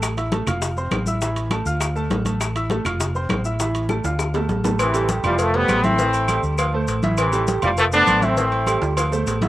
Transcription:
Already playing: A1 A3 A4 A5
0.02 high bongo, high timbale, claves, maracas
0.17 E4 E5 E6, high bongo, high conga, high timbale, maracas
0.32 A3 A4 A5, high bongo, high conga, high timbale, low timbale, maracas
0.46 F1 F4 F5 F6, high bongo, high conga, low conga, high timbale, claves, maracas
0.62 high bongo, high conga, high timbale, maracas
0.77 C4 C5 C6, high bongo, high conga, maracas
0.91 A1, high bongo, low bongo, high conga, high timbale, low timbale, claves, maracas
1.06 E4 E5 E6, high conga, maracas
1.21 E3 E4 E5, high bongo, high timbale, maracas
1.36 high bongo, high conga, high timbale, maracas
1.51 A3 A4 A5, high bongo, high conga, high timbale, low timbale, claves, maracas
1.66 D2 F4 F5 F6, high bongo, high conga, maracas
1.81 high bongo, high conga, high timbale, claves, maracas
1.95 A3 A4 A5, high bongo, high conga, maracas
2.10 A1, high bongo, low bongo, high conga, high timbale, low timbale, maracas
2.25 A3 A4 A5, high conga, high timbale, maracas
2.41 high bongo, high timbale, claves, maracas
2.55 E4 E5 E6, high bongo, high conga, high timbale, maracas
2.70 A3 A4 A5, high bongo, high conga, high timbale, low timbale, maracas
2.85 F1 F4 F5 F6, high bongo, high conga, low conga, high timbale, claves, maracas
3.00 high bongo, high conga, low conga, high timbale, maracas
3.14 C4 C5 C6, high bongo, high conga, maracas
3.29 A1, high bongo, low bongo, high conga, high timbale, low timbale, claves, maracas
3.45 E4 E5 E6, maracas
3.59 E3 E4 E5, high bongo, high conga, high timbale, maracas
3.74 high bongo, high conga, high timbale, maracas
3.89 A3 A4 A5, high bongo, high conga, high timbale, claves, maracas
4.04 D2 F4 F5 F6, high bongo, high conga, high timbale, maracas
4.19 high bongo, high conga, claves, maracas
4.34 A3 A4 A5, high bongo, high conga, low timbale, maracas
4.49 A1, high conga, low timbale, maracas
4.64 A3 A4 A5, low bongo, high conga, low timbale, maracas
4.79 C3 E3, cowbell, low agogo, claves, maracas
4.94 G3 G4 A4, high conga, low agogo, maracas
5.09 G3 G4 A4, cowbell, high conga, maracas
5.23 F1 E3 F3 G3 F4 F5, high conga, low conga, low agogo, claves, maracas
5.39 F3 A3, cowbell, high conga, low agogo, maracas
5.54 G3 A3 B3 A4 C5, cowbell, high conga
5.68 A1, cowbell, high conga, low timbale, low agogo, claves, maracas
5.84 E3 A3 C4 E4 E5, high conga, low agogo, maracas
5.98 E3 E4 E5, cowbell, high conga, maracas
6.13 high conga, low agogo, maracas
6.28 G3 G4 A4, cowbell, high conga, low agogo, claves, maracas
6.43 D2, maracas
6.58 F3 F4 F5, cowbell, high conga, low agogo, claves, maracas
6.73 A3 A4 C5, high conga
6.88 A1, cowbell, high conga, low agogo, maracas
7.03 E3 E4 E5, cowbell, high conga, maracas
7.17 C3 E3, cowbell, low agogo, claves, maracas
7.33 G3 G4 A4, high conga, low agogo, maracas
7.47 G3 G4 A4, cowbell, high conga, maracas
7.62 F1 E3 F3 G3 F4 F5, high conga, low conga, low agogo, claves, maracas
7.77 F3 A3, cowbell, high conga, low agogo, maracas
7.92 A3 B3 D4 A4 C5, cowbell, high conga, maracas
8.07 A1, cowbell, high conga, low agogo, claves, maracas
8.22 E3 A3 C4 E4 E5, high conga, low agogo, maracas
8.37 E3 E4 E5, cowbell, high conga, maracas
8.52 high conga, low agogo
8.66 G3 G4 A4, cowbell, high conga, low agogo, claves, maracas
8.82 D2, high timbale, maracas
8.97 F3 F4 F5, cowbell, high conga, high timbale, low agogo, claves, maracas
9.12 A3 A4 C5, high conga, low timbale, maracas
9.26 A1, cowbell, high conga, low timbale, low agogo, maracas
9.41 E3 E4 E5, cowbell, high conga, low timbale, maracas

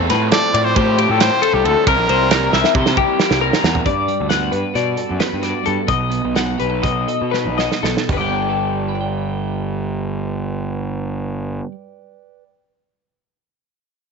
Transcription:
Already playing: A2 F3 A3 C4 F4
0.10 A2 B4, snare, ride
0.32 A4 D5, snare, ride
0.53 A2 F3 A3 C4 F4 D5, ride
0.64 C5
0.76 A2 G4 C5, kick, ride
0.98 G4, ride
1.10 A2 A4
1.19 A2 F3 A3 C4 F4 C5, snare, ride
1.42 A4, ride
1.54 C2 G4
1.65 D2 A4, ride
1.86 C2 C3 G3 A#3 E4 A#4, kick, ride
1.98 A#1
2.09 C2 C5, ride
2.31 A#4, snare, ride
2.52 C2 C3 G3 A#3 E4 E5, snare
2.64 snare
2.75 C3 C5, kick
2.86 snare
2.97 G4, kick
3.19 C3 G3 A#3 E4, snare
3.31 C2, snare
3.41 A#4
3.53 snare
3.64 E2, snare
3.75 floor tom
3.86 G2 D5, kick, closed hi-hat
4.08 G3, closed hi-hat
4.20 D2
4.29 B3 F#5, snare, closed hi-hat
4.51 G2 B4, closed hi-hat
4.74 B2 F#4 D5, snare, closed hi-hat
4.96 A4, closed hi-hat
5.10 F#2
5.20 B3 B4, snare, closed hi-hat
5.33 G2
5.42 F#4 D5, snare, closed hi-hat
5.63 G2 A4, closed hi-hat
5.67 G2
5.87 B1 B2 D#5, kick, closed hi-hat
6.10 B3, closed hi-hat
6.24 B1
6.35 D#4 F#5, snare, closed hi-hat
6.58 B1 G4 B4, closed hi-hat
6.70 A4
6.82 B1 F#4 D#5, kick, closed hi-hat
7.08 A4, closed hi-hat
7.22 B2
7.31 D#4 B4, snare
7.45 B1
7.58 F#4 D#5, snare
7.72 snare
7.83 B1 B2 A4, snare
7.97 snare
8.09 G1 G2 G4, kick, floor tom, crash
8.13 B4
8.17 G3 D5 G5
8.30 B3
8.50 A4
8.89 B4
8.95 D5
9.01 G5

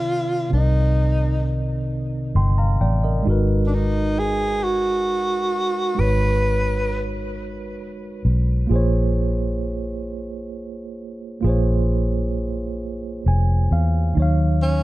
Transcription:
Already playing: C2 C3 D#3 C4 F4 A#4 D5
0.49 C3 C4
0.53 C2 D#4 A#4
0.58 D#5
2.35 G1 G5 C6
2.58 F5 A#5
2.81 A1 D5 G5
3.04 A#4 D#5
3.23 G#3 D#4
3.27 G#1 F#4 A#4
3.31 B4
3.66 D4
3.74 D#4
4.19 G#4
4.64 F#4
5.95 G#3 D#4 F#4
5.99 G#1 B4 C#5
7.80 F1
8.25 B1
8.67 A#1 A#3 F4
8.71 G#4 C5
8.76 C#5
11.41 A#1 A#3 F4 G#4
11.47 C5 C#5
13.26 F1 G#5
13.71 E2 F5
14.14 D#2 D#3 F#3 D#4
14.20 C#5 F5
14.62 C#4

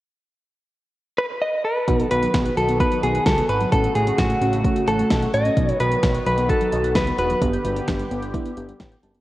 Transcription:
1.18 B4
1.42 D#5
1.65 B4
1.88 B1 D#3 F#3 B3 D#4 F#4, kick, closed hi-hat
1.99 B3, closed hi-hat
2.11 B1 B3 D#4 F#4 B4 F#6, closed hi-hat
2.22 F#3, closed hi-hat
2.34 B1 B3 D#4 G#4, kick, snare, closed hi-hat
2.45 F#6, closed hi-hat
2.57 B1 F#3 B3 D#4 F#4 A4, closed hi-hat
2.68 B3, closed hi-hat
2.80 B3 D#4 F#4 B4 F#6, kick, closed hi-hat
2.92 F#3, closed hi-hat
3.03 B1 B3 D#4 F#4 G#4, closed hi-hat
3.15 F#6, closed hi-hat
3.26 C#2 F#3 B3 D#4 F#4 A4, kick, snare, closed hi-hat
3.38 B3, closed hi-hat
3.49 G#1 B3 D#4 F#4 B4 F#6, closed hi-hat
3.61 F#3, closed hi-hat
3.72 A1 C#3 A3 C#4 F#4 A4, kick, closed hi-hat
3.84 F#5, closed hi-hat
3.95 A1 A3 C#4 F#4 G#4, closed hi-hat
4.07 C#4, closed hi-hat
4.18 A1 A3 C#4 F#4 F#5, kick, snare, closed hi-hat
4.30 A3, closed hi-hat
4.42 A1 A3 C#4 F#4, closed hi-hat
4.53 F#5, closed hi-hat
4.65 A3 C#4 F#4, kick, closed hi-hat
4.76 C#4, closed hi-hat
4.88 A1 A3 C#4 A4 F#5, closed hi-hat
4.99 A3, closed hi-hat
5.11 B1 A3 C#4 F#4, kick, snare, closed hi-hat
5.22 F#5, closed hi-hat
5.34 A1 A3 C#4 F#4 D#5, closed hi-hat
5.45 C#4, closed hi-hat
5.57 B1 D#3 F#3 B3 D#4 F#4, kick, closed hi-hat
5.69 B3, closed hi-hat
5.80 B1 B3 D#4 F#4 B4 F#6, closed hi-hat
5.92 F#3, closed hi-hat
6.03 B1 B3 D#4 F#4, kick, snare, closed hi-hat
6.15 F#6, closed hi-hat
6.26 B1 F#3 B3 D#4 F#4 B4, closed hi-hat
6.38 B3, closed hi-hat
6.49 B3 D#4 F#4 A4 F#6, kick, closed hi-hat
6.61 F#3, closed hi-hat
6.72 B1 B3 D#4 F#4, closed hi-hat
6.84 F#6, closed hi-hat
6.95 C#2 F#3 B3 D#4 F#4 B4, kick, snare, closed hi-hat
7.07 B3, closed hi-hat
7.18 E1 B3 D#4 F#4 B4 F#6, closed hi-hat
7.30 F#3, closed hi-hat
7.42 G1 D3 B3 D4 G4, kick, closed hi-hat
7.53 G6, closed hi-hat
7.65 G1 G3 B3 D4 F#4, closed hi-hat
7.76 B3, closed hi-hat
7.88 G1 B3 D4 G4 G6, kick, snare, closed hi-hat
7.99 G3, closed hi-hat
8.11 G1 B3 D4 G4, closed hi-hat
8.22 G6, closed hi-hat
8.34 G3 B3 D4 E4, kick, closed hi-hat
8.45 B3, closed hi-hat
8.57 G1 B3 D4 G4 G6, closed hi-hat
8.69 G3, closed hi-hat
8.80 A1 B3 D4 G4 G5, kick, snare, closed hi-hat
8.92 G6, closed hi-hat
9.03 F#1 G3 B3 D4 G4 A5, closed hi-hat
9.15 B3, closed hi-hat

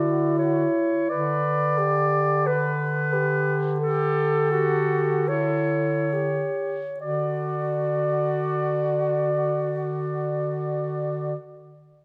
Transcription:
Already playing: D3 E4 F#4 D5
0.39 C#5
1.09 D3 B4 D5
1.78 G4
2.46 B4
3.13 G4
3.80 G4 A4
4.51 F#4 G4
5.28 E4 A4 C#5
6.14 G4
7.00 D3 F#4 D5

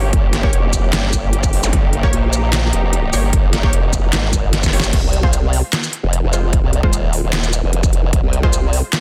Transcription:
Already playing: G1 A#3 C#4 G4 C#5
0.13 G1, kick, closed hi-hat
0.33 snare, closed hi-hat
0.43 A#3 G4 C#5, kick
0.53 F1, closed hi-hat
0.73 kick, closed hi-hat, shaker
0.93 G1, snare, clap, closed hi-hat
1.13 kick, closed hi-hat, shaker
1.33 closed hi-hat
1.43 kick, shaker
1.53 G1, open hi-hat
1.63 zap, shaker
1.73 G1 D#4, kick, closed hi-hat
1.93 closed hi-hat
2.03 A#3 G4 C#5, kick
2.13 A#1, closed hi-hat
2.33 closed hi-hat, shaker
2.53 snare, clap, closed hi-hat
2.73 F1, closed hi-hat
2.93 closed hi-hat
3.13 G1 A#3 G4 C#5, open hi-hat, shaker
3.33 G1, kick, closed hi-hat
3.53 snare, closed hi-hat
3.63 A#3 G4 C#5, kick
3.73 F1, closed hi-hat
3.93 kick, closed hi-hat, shaker
4.13 G#1, snare, clap, closed hi-hat
4.33 kick, closed hi-hat, shaker
4.53 G1, snare, closed hi-hat
4.63 kick, snare, shaker
4.73 G1 A#3 G4 C#5, open hi-hat
4.80 snare, shaker
4.93 F1, kick, closed hi-hat, crash
5.03 C2
5.13 closed hi-hat
5.23 G#3 F4 C5, kick
5.33 closed hi-hat, shaker
5.53 open hi-hat
5.73 snare, clap, closed hi-hat
5.83 shaker
5.93 closed hi-hat
6.03 F1
6.13 closed hi-hat
6.23 F1
6.33 G#3 F4 C5, closed hi-hat, shaker
6.53 kick, closed hi-hat
6.63 C2
6.73 closed hi-hat
6.83 D#1 G#3 F4 C5, kick
6.93 closed hi-hat, shaker
7.13 open hi-hat
7.23 D#1
7.33 snare, clap, closed hi-hat
7.43 shaker
7.53 closed hi-hat, shaker
7.63 F1
7.73 closed hi-hat
7.83 kick, shaker
7.93 closed hi-hat
8.13 F1, kick, closed hi-hat
8.23 C2
8.33 closed hi-hat
8.43 G#3 F4 C5, kick
8.53 closed hi-hat, shaker
8.73 open hi-hat
8.93 snare, clap, closed hi-hat

